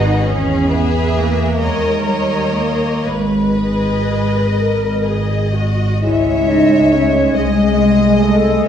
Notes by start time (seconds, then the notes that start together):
Already playing: G#1 D#4 F#4 G#4 B4 D#5
0.24 E2 C#4 G#4
0.69 B3 G#4 B4 E5
1.15 A#3
1.59 D#2 G#3 A#4 C#5 D#5
2.06 G3 A#4 C#5 D#5
2.56 A#3
3.04 G#1 G#3 B4
3.55 G#4 B4 D#5
4.55 G#1 A#4
5.04 G#4 D#5
5.55 F#4
6.02 C#2 G#3 E4 C#5 E5
6.48 D#4 D#5
6.92 C#4 C#5
7.35 C2 G#3 G#4 D#5
8.21 A3 A4
8.65 C#2 C#5